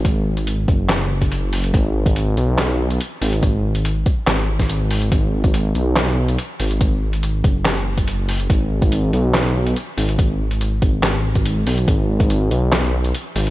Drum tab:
HH |x--xx-x-x--xx-ox|x--xx-x-x--xx-ox|x--xx-x-x--xx-ox|x--xx-x-x--xx-ox|
CP |--------x-------|--------x-------|--------x-------|--------x-------|
SD |--------o-------|--------o-------|--------o--o----|--------o-------|
BD |o-----o----o----|o--o------------|o-----o----o----|o--o------------|

HH |x--xx-x-x--xx-ox|x--xx-x-x--xx-ox|x--xx-x-x--xx-ox|x--xx-x-x--xx-ox|
CP |--------x-------|--------x-------|--------x-------|--------x-------|
SD |--------o-------|--------o-------|--------o-------|--------o-------|
BD |o-----o----o----|o--o------------|o-----o----o----|o--o------------|